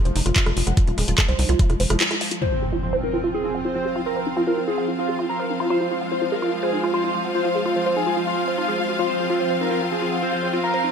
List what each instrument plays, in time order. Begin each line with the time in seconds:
Already playing: synth texture F3 G#3
0.05 analog synth bass F1, synth arpeggio sound C5, closed hi-hat
0.16 analog synth bass F1, synth arpeggio sound D#4, open hi-hat
0.26 analog synth bass F1, synth arpeggio sound F4, cross-stick, closed hi-hat
0.36 synth arpeggio sound F4, kick, clap, closed hi-hat
0.46 analog synth bass F1, synth arpeggio sound F4, cross-stick, closed hi-hat
0.57 analog synth bass F1, synth arpeggio sound F4, open hi-hat
0.67 analog synth bass F1, synth arpeggio sound F#5, cross-stick, closed hi-hat
0.77 synth arpeggio sound F4, kick, closed hi-hat
0.87 analog synth bass D#1, synth arpeggio sound F4, closed hi-hat
0.98 analog synth bass D#1, synth arpeggio sound G#4, cross-stick, open hi-hat
1.08 analog synth bass D#1, synth arpeggio sound F4, closed hi-hat
1.18 kick, cross-stick, clap, closed hi-hat
1.29 analog synth bass C2, synth arpeggio sound C5, closed hi-hat
1.39 analog synth bass C2, synth arpeggio sound D#4, open hi-hat
1.49 analog synth bass C2, synth arpeggio sound F4, closed hi-hat
1.59 synth arpeggio sound F4, kick, closed hi-hat
1.70 analog synth bass F1, synth arpeggio sound F4, cross-stick, closed hi-hat
1.80 analog synth bass F1, synth arpeggio sound C5, open hi-hat
1.90 analog synth bass F1, synth arpeggio sound F4, cross-stick, closed hi-hat
2.00 synth arpeggio sound F4, clap, closed hi-hat
2.11 synth arpeggio sound F4, cross-stick, closed hi-hat
2.21 synth arpeggio sound F5, open hi-hat
2.31 synth arpeggio sound F4, closed hi-hat
2.42 synth texture F3 C4, string section C4, synth arpeggio sound F4, analog synth lead C5, impact
2.52 synth arpeggio sound F4
2.62 synth arpeggio sound G#4
2.72 synth arpeggio sound F4
2.83 analog synth lead C5
2.93 synth arpeggio sound C5
2.98 string section F4
3.03 synth arpeggio sound D#4, analog synth lead A#4
3.14 synth arpeggio sound F4
3.24 synth arpeggio sound F4
3.34 synth arpeggio sound F4, analog synth lead G#4
3.44 synth arpeggio sound F4
3.55 string section C5, synth arpeggio sound F#5
3.65 synth arpeggio sound F4, analog synth lead C5
3.75 synth arpeggio sound F4
3.85 synth arpeggio sound G#4, string section F5
3.96 synth arpeggio sound F4
4.06 analog synth lead A#4
4.16 synth arpeggio sound C5
4.27 synth arpeggio sound D#4
4.37 synth arpeggio sound F4
4.47 synth arpeggio sound F4, analog synth lead A#4
4.57 synth arpeggio sound F4
4.68 synth arpeggio sound F4, analog synth lead G#4
4.78 synth arpeggio sound F#5
4.88 synth arpeggio sound F4
4.98 synth arpeggio sound F4, analog synth lead F4
5.09 synth arpeggio sound G#4
5.19 synth arpeggio sound F4
5.29 analog synth lead A#4
5.40 synth arpeggio sound C5
5.50 synth arpeggio sound D#4
5.60 synth arpeggio sound F4
5.70 synth texture G#3, synth arpeggio sound F4, analog synth lead C5
5.81 synth arpeggio sound F4
5.91 synth arpeggio sound F4
6.01 synth arpeggio sound F#5
6.11 synth arpeggio sound F4, analog synth lead C5
6.22 synth arpeggio sound F4
6.32 synth arpeggio sound G#4, analog synth lead A#4
6.42 synth arpeggio sound F4
6.63 analog synth lead G#4, synth arpeggio sound C5
6.73 synth arpeggio sound D#4
6.83 synth arpeggio sound F4
6.94 synth arpeggio sound F4, analog synth lead C5
7.04 synth arpeggio sound F4
7.14 synth arpeggio sound F4
7.24 synth arpeggio sound F#5
7.35 synth arpeggio sound F4, analog synth lead C5
7.45 synth arpeggio sound F4
7.55 synth arpeggio sound G#4
7.66 synth arpeggio sound F4
7.76 analog synth lead C5
7.86 synth arpeggio sound C5
7.96 synth arpeggio sound D#4, analog synth lead G#4
8.07 synth arpeggio sound F4
8.17 synth arpeggio sound F4
8.27 analog synth lead F4, synth arpeggio sound F4
8.48 synth arpeggio sound C5
8.58 synth arpeggio sound D#4, analog synth lead F4
8.68 synth arpeggio sound G#4
8.79 synth arpeggio sound F4
8.89 synth arpeggio sound F#4
8.99 synth texture C4, synth arpeggio sound F4, analog synth lead C5
9.09 synth arpeggio sound F4
9.20 synth arpeggio sound G#4
9.30 synth arpeggio sound F4
9.40 analog synth lead C5, synth arpeggio sound F5
9.50 synth arpeggio sound C5
9.61 synth arpeggio sound D#4, analog synth lead A#4
9.71 synth arpeggio sound F4
9.81 synth arpeggio sound F4
9.92 synth arpeggio sound F4, analog synth lead G#4
10.02 synth arpeggio sound F4
10.12 synth arpeggio sound F#5
10.22 synth arpeggio sound F4, analog synth lead C5
10.33 synth arpeggio sound F4
10.43 wobble bass C4, synth arpeggio sound G#4
10.53 synth arpeggio sound F4
10.63 analog synth lead A#4, synth arpeggio sound F5
10.74 synth arpeggio sound C5
10.84 synth arpeggio sound D#4